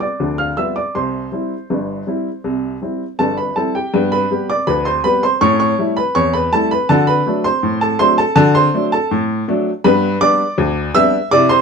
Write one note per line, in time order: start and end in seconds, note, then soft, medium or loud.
0.00 0.36 D5 medium
0.00 0.36 D6 medium
0.20 0.52 D2 medium
0.20 0.52 D3 medium
0.38 0.56 F5 medium
0.38 0.57 F6 medium
0.57 0.78 G3 soft
0.57 0.78 B3 soft
0.57 0.79 F4 soft
0.57 0.75 E5 medium
0.57 0.76 E6 medium
0.76 0.94 D5 medium
0.76 0.95 D6 medium
0.95 1.27 C2 medium
0.95 1.27 C3 medium
0.95 3.52 C5 medium
0.95 3.04 C6 medium
1.32 1.52 G3 soft
1.32 1.53 C4 soft
1.32 1.53 E4 soft
1.70 2.02 G1 medium
1.70 2.02 G2 medium
2.07 2.27 G3 soft
2.07 2.28 C4 soft
2.07 2.28 E4 medium
2.44 2.76 C2 medium
2.44 2.76 C3 medium
2.82 3.02 G3 soft
2.82 3.02 C4 soft
2.82 3.03 E4 soft
3.19 3.50 G1 medium
3.19 3.50 G2 medium
3.19 3.36 A4 medium
3.19 3.37 A5 medium
3.37 3.55 B4 soft
3.37 3.56 B5 medium
3.56 3.76 G3 soft
3.56 3.77 C4 soft
3.56 3.77 E4 soft
3.56 3.74 A4 medium
3.56 3.74 A5 medium
3.75 4.10 G4 medium
3.75 4.10 G5 medium
3.94 4.25 G2 loud
3.94 4.15 B3 medium
4.12 4.47 B4 medium
4.12 4.47 B5 medium
4.31 4.51 G3 soft
4.31 4.52 B3 soft
4.31 4.52 G4 medium
4.50 4.67 D5 medium
4.50 4.68 D6 medium
4.67 4.99 D2 medium
4.67 4.85 B4 medium
4.67 4.86 B5 loud
4.85 5.03 C5 medium
4.85 5.04 C6 medium
5.04 5.25 G3 medium
5.04 5.25 B3 medium
5.04 5.25 G4 medium
5.04 5.22 B4 medium
5.04 5.23 B5 loud
5.23 5.41 C5 medium
5.23 5.41 C6 medium
5.41 5.73 A2 loud
5.41 5.63 C#4 medium
5.41 5.59 C#5 medium
5.41 5.58 C#6 loud
5.60 5.95 C#5 medium
5.60 5.95 C#6 medium
5.79 5.99 G3 medium
5.79 5.99 A3 medium
5.79 5.99 E4 medium
5.97 6.14 B4 medium
5.97 6.15 B5 medium
6.15 6.47 E2 medium
6.15 6.33 C#5 medium
6.15 6.34 C#6 loud
6.33 6.51 B4 medium
6.33 6.52 B5 medium
6.53 6.73 G3 medium
6.53 6.73 A3 medium
6.53 6.74 E4 medium
6.53 6.70 A4 medium
6.53 6.71 A5 loud
6.71 6.89 B4 medium
6.71 6.89 B5 medium
6.89 7.21 D3 loud
6.89 7.11 F#4 medium
6.89 7.07 A4 medium
6.89 7.08 A5 loud
7.07 7.42 B4 medium
7.07 7.42 B5 loud
7.26 7.46 F#3 medium
7.26 7.47 A3 medium
7.26 7.47 D4 medium
7.44 7.79 C5 medium
7.44 7.79 C6 loud
7.63 7.94 A2 medium
7.81 7.99 A4 medium
7.81 8.00 A5 medium
7.99 8.20 F#3 medium
7.99 8.20 A3 medium
7.99 8.20 D4 medium
7.99 8.17 C5 medium
7.99 8.18 C6 loud
8.18 8.35 A4 medium
8.18 8.34 A5 loud
8.36 8.67 D3 loud
8.36 8.58 F#4 medium
8.36 8.54 A4 medium
8.36 8.54 A5 loud
8.55 8.90 C5 medium
8.55 8.84 C6 loud
8.74 8.94 F#3 medium
8.74 8.94 A3 medium
8.74 8.95 D4 medium
8.92 9.27 A4 medium
8.92 9.21 A5 medium
9.11 9.42 A2 medium
9.48 9.68 F#3 medium
9.48 9.68 A3 medium
9.48 9.69 D4 medium
9.84 10.16 G2 loud
9.84 10.06 B3 medium
9.84 10.19 B4 loud
9.84 10.14 B5 loud
10.21 10.41 G3 medium
10.21 10.41 B3 medium
10.21 10.42 D4 medium
10.21 10.91 D5 loud
10.21 10.80 D6 loud
10.58 10.89 D2 loud
10.95 11.15 G3 medium
10.95 11.15 B3 medium
10.95 11.16 D4 medium
10.95 11.29 E5 loud
10.95 11.24 E6 loud
11.31 11.62 C3 loud
11.31 11.53 E4 medium
11.31 11.49 D5 loud
11.31 11.50 D6 loud
11.49 11.62 C5 medium
11.49 11.62 C6 loud